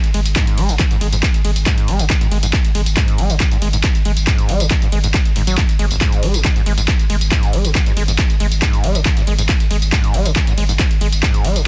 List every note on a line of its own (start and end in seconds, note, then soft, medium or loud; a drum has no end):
0.04 closed hi-hat medium
0.04 tambourine soft
0.14 0.25 G#1 loud
0.14 0.20 G#3 medium
0.14 open hi-hat loud
0.14 ride medium
0.26 0.36 G#1 medium
0.26 closed hi-hat medium
0.26 tambourine medium
0.36 0.59 G#2 medium
0.36 kick loud
0.36 clap loud
0.36 closed hi-hat medium
0.36 ride medium
0.36 tambourine medium
0.47 closed hi-hat medium
0.47 tambourine soft
0.58 0.68 G#1 loud
0.58 0.71 G#3 medium
0.58 open hi-hat medium
0.58 ride medium
0.69 0.79 G#1 medium
0.69 0.75 C#3 medium
0.69 closed hi-hat medium
0.69 tambourine medium
0.79 0.83 D#3 loud
0.79 kick loud
0.79 clap loud
0.79 closed hi-hat medium
0.79 ride medium
0.79 tambourine soft
0.91 0.96 G#2 medium
0.91 closed hi-hat medium
0.91 tambourine soft
1.01 1.12 G#1 loud
1.01 1.07 G#3 medium
1.01 open hi-hat loud
1.01 ride medium
1.12 1.23 G#1 medium
1.12 1.16 G#2 medium
1.12 closed hi-hat medium
1.12 tambourine medium
1.23 kick loud
1.23 clap loud
1.23 closed hi-hat medium
1.23 ride medium
1.23 tambourine soft
1.34 closed hi-hat medium
1.34 tambourine soft
1.45 1.55 G#1 loud
1.45 1.51 G#3 medium
1.45 open hi-hat loud
1.45 ride medium
1.56 1.66 G#1 medium
1.56 closed hi-hat medium
1.56 tambourine medium
1.66 1.90 G#2 medium
1.66 kick loud
1.66 clap loud
1.66 closed hi-hat medium
1.66 ride medium
1.66 tambourine medium
1.78 closed hi-hat medium
1.78 tambourine soft
1.88 1.99 G#1 loud
1.88 2.01 G#3 medium
1.88 open hi-hat loud
1.88 ride medium
1.99 2.10 G#1 medium
1.99 2.05 C#3 medium
1.99 closed hi-hat medium
1.99 tambourine medium
2.10 2.14 D#3 loud
2.10 kick loud
2.10 clap loud
2.10 closed hi-hat medium
2.10 ride medium
2.10 tambourine medium
2.21 2.27 G#2 medium
2.21 closed hi-hat medium
2.21 tambourine soft
2.32 2.42 G#1 loud
2.32 2.38 G#3 medium
2.32 open hi-hat loud
2.32 ride medium
2.43 2.53 G#1 medium
2.43 2.46 G#2 medium
2.43 closed hi-hat medium
2.43 tambourine medium
2.53 kick loud
2.53 clap loud
2.53 closed hi-hat medium
2.53 ride medium
2.53 tambourine medium
2.65 closed hi-hat medium
2.65 tambourine soft
2.75 2.86 G#1 loud
2.75 2.81 G#3 medium
2.75 open hi-hat loud
2.75 ride medium
2.86 2.97 G#1 medium
2.86 closed hi-hat medium
2.86 tambourine medium
2.97 3.20 G#2 medium
2.97 kick loud
2.97 clap loud
2.97 closed hi-hat medium
2.97 ride medium
2.97 tambourine medium
3.08 closed hi-hat medium
3.08 tambourine soft
3.18 3.29 G#1 loud
3.18 3.31 G#3 medium
3.18 open hi-hat loud
3.18 ride medium
3.30 3.40 G#1 medium
3.30 3.36 C#3 medium
3.30 closed hi-hat medium
3.30 tambourine medium
3.40 3.44 D#3 loud
3.40 kick loud
3.40 clap loud
3.40 closed hi-hat medium
3.40 ride medium
3.40 tambourine medium
3.51 3.57 G#2 medium
3.51 closed hi-hat medium
3.51 tambourine soft
3.62 3.73 G#1 loud
3.62 3.68 G#3 medium
3.62 open hi-hat loud
3.62 ride medium
3.73 3.83 G#1 medium
3.73 3.77 G#2 medium
3.73 closed hi-hat medium
3.73 tambourine medium
3.84 kick loud
3.84 clap loud
3.84 closed hi-hat medium
3.84 ride medium
3.84 tambourine medium
3.95 closed hi-hat medium
3.95 tambourine soft
4.05 4.16 G#1 medium
4.05 4.12 G#3 medium
4.05 open hi-hat loud
4.05 ride medium
4.17 4.27 G#1 medium
4.17 closed hi-hat medium
4.17 tambourine medium
4.27 4.50 G#2 medium
4.27 kick loud
4.27 clap loud
4.27 closed hi-hat medium
4.27 ride medium
4.27 tambourine medium
4.38 closed hi-hat medium
4.38 tambourine soft
4.49 4.60 G#1 loud
4.49 4.62 G#3 medium
4.49 open hi-hat loud
4.49 ride medium
4.60 4.70 G#1 medium
4.60 4.66 C#3 medium
4.60 closed hi-hat medium
4.60 tambourine medium
4.71 4.74 D#3 loud
4.71 kick loud
4.71 clap loud
4.71 closed hi-hat medium
4.71 ride medium
4.71 tambourine medium
4.82 4.88 G#2 medium
4.82 closed hi-hat medium
4.82 tambourine soft
4.92 5.03 G#1 loud
4.92 4.99 G#3 medium
4.92 open hi-hat loud
4.92 ride medium
5.04 5.14 G#1 medium
5.04 5.07 G#2 medium
5.04 closed hi-hat medium
5.04 tambourine medium
5.14 kick loud
5.14 clap loud
5.14 closed hi-hat medium
5.14 ride medium
5.14 tambourine medium
5.25 closed hi-hat soft
5.25 tambourine soft
5.36 5.47 G#1 loud
5.36 5.42 G#2 medium
5.36 open hi-hat loud
5.36 ride medium
5.47 5.57 G#1 medium
5.47 5.56 F#3 medium
5.47 closed hi-hat medium
5.47 tambourine medium
5.58 5.64 G#2 loud
5.58 kick loud
5.58 clap loud
5.58 closed hi-hat medium
5.58 ride medium
5.58 tambourine medium
5.69 closed hi-hat medium
5.69 tambourine soft
5.79 5.90 G#1 medium
5.79 5.86 G#3 medium
5.79 open hi-hat loud
5.79 ride medium
5.91 5.96 G#1 loud
5.91 6.01 G#1 medium
5.91 closed hi-hat medium
5.91 tambourine medium
6.01 6.24 G#2 medium
6.01 kick loud
6.01 clap loud
6.01 closed hi-hat medium
6.01 ride medium
6.01 tambourine medium
6.12 closed hi-hat medium
6.12 tambourine soft
6.23 6.34 G#1 loud
6.23 6.36 G#3 medium
6.23 open hi-hat loud
6.23 ride medium
6.34 6.44 G#1 medium
6.34 6.40 C#3 medium
6.34 closed hi-hat medium
6.34 tambourine medium
6.45 6.48 D#3 loud
6.45 kick loud
6.45 clap loud
6.45 closed hi-hat medium
6.45 ride medium
6.45 tambourine medium
6.56 6.62 G#2 medium
6.56 closed hi-hat soft
6.56 tambourine soft
6.66 6.77 G#1 loud
6.66 6.73 G#3 medium
6.66 open hi-hat loud
6.66 ride medium
6.78 6.88 G#1 medium
6.78 6.81 G#2 medium
6.78 closed hi-hat medium
6.78 tambourine medium
6.88 kick loud
6.88 clap loud
6.88 closed hi-hat medium
6.88 ride medium
6.88 tambourine medium
6.99 closed hi-hat medium
6.99 tambourine soft
7.10 7.21 G#1 loud
7.10 7.16 G#3 medium
7.10 open hi-hat loud
7.10 ride medium
7.21 7.31 G#1 medium
7.21 closed hi-hat medium
7.21 tambourine medium
7.32 7.55 G#2 medium
7.32 kick loud
7.32 clap loud
7.32 closed hi-hat medium
7.32 ride medium
7.32 tambourine medium
7.43 closed hi-hat medium
7.43 tambourine soft
7.53 7.64 G#1 loud
7.53 7.66 G#3 medium
7.53 open hi-hat medium
7.53 ride medium
7.65 7.75 G#1 medium
7.65 7.70 C#3 medium
7.65 closed hi-hat medium
7.65 tambourine medium
7.75 7.79 D#3 loud
7.75 kick loud
7.75 clap loud
7.75 closed hi-hat medium
7.75 ride medium
7.75 tambourine medium
7.86 7.92 G#2 medium
7.86 closed hi-hat medium
7.86 tambourine soft
7.97 8.08 G#1 loud
7.97 8.03 G#3 medium
7.97 open hi-hat loud
7.97 ride medium
8.08 8.18 G#1 medium
8.08 8.12 G#2 medium
8.08 closed hi-hat medium
8.08 tambourine medium
8.18 kick loud
8.18 clap loud
8.18 closed hi-hat medium
8.18 ride medium
8.18 tambourine medium
8.30 closed hi-hat medium
8.30 tambourine soft
8.40 8.51 G#1 loud
8.40 8.46 G#3 medium
8.40 open hi-hat medium
8.40 ride medium
8.52 8.62 G#1 medium
8.52 closed hi-hat soft
8.52 tambourine medium
8.62 8.85 G#2 medium
8.62 kick loud
8.62 clap loud
8.62 closed hi-hat medium
8.62 ride medium
8.62 tambourine medium
8.73 closed hi-hat soft
8.73 tambourine soft
8.84 8.95 G#1 loud
8.84 8.97 G#3 medium
8.84 open hi-hat medium
8.84 ride medium
8.95 9.05 G#1 medium
8.95 9.01 C#3 medium
8.95 closed hi-hat medium
8.95 tambourine medium
9.05 9.09 D#3 loud
9.05 kick loud
9.05 clap loud
9.05 closed hi-hat medium
9.05 ride medium
9.05 tambourine medium
9.17 9.22 G#2 medium
9.17 closed hi-hat medium
9.17 tambourine soft
9.27 9.38 G#1 medium
9.27 9.33 G#3 medium
9.27 open hi-hat medium
9.27 ride medium
9.39 9.49 G#1 medium
9.39 9.42 G#2 medium
9.39 closed hi-hat soft
9.39 tambourine medium
9.49 kick loud
9.49 clap loud
9.49 closed hi-hat medium
9.49 ride medium
9.49 tambourine medium
9.60 closed hi-hat medium
9.60 tambourine soft
9.71 9.81 G#1 loud
9.71 9.77 G#3 medium
9.71 open hi-hat loud
9.71 ride medium
9.82 9.92 G#1 medium
9.82 closed hi-hat medium
9.82 tambourine medium
9.92 10.16 G#2 medium
9.92 kick loud
9.92 clap loud
9.92 closed hi-hat medium
9.92 ride medium
9.92 tambourine medium
10.04 closed hi-hat medium
10.04 tambourine soft
10.14 10.25 G#1 loud
10.14 10.27 G#3 medium
10.14 open hi-hat medium
10.14 ride medium
10.26 10.36 G#1 medium
10.26 10.31 C#3 medium
10.26 closed hi-hat medium
10.26 tambourine medium
10.36 10.40 D#3 loud
10.36 kick loud
10.36 clap loud
10.36 closed hi-hat medium
10.36 ride medium
10.36 tambourine medium
10.47 10.53 G#2 medium
10.47 closed hi-hat medium
10.47 tambourine soft
10.58 10.68 G#1 loud
10.58 10.64 G#3 medium
10.58 open hi-hat loud
10.58 ride medium
10.69 10.79 G#1 medium
10.69 10.72 G#2 medium
10.69 closed hi-hat medium
10.69 tambourine medium
10.79 kick loud
10.79 clap loud
10.79 closed hi-hat medium
10.79 ride medium
10.79 tambourine medium
10.91 closed hi-hat medium
10.91 tambourine soft
11.01 11.12 G#1 loud
11.01 11.07 G#3 medium
11.01 open hi-hat medium
11.01 ride medium
11.12 11.23 G#1 medium
11.12 closed hi-hat medium
11.12 tambourine medium
11.23 11.46 G#2 medium
11.23 kick loud
11.23 clap loud
11.23 closed hi-hat medium
11.23 ride medium
11.23 tambourine medium
11.34 closed hi-hat medium
11.34 tambourine soft
11.45 11.55 G#1 loud
11.45 11.57 G#3 medium
11.45 open hi-hat loud
11.45 ride medium
11.56 11.66 G#1 medium
11.56 11.62 C#3 medium
11.56 closed hi-hat medium
11.56 tambourine medium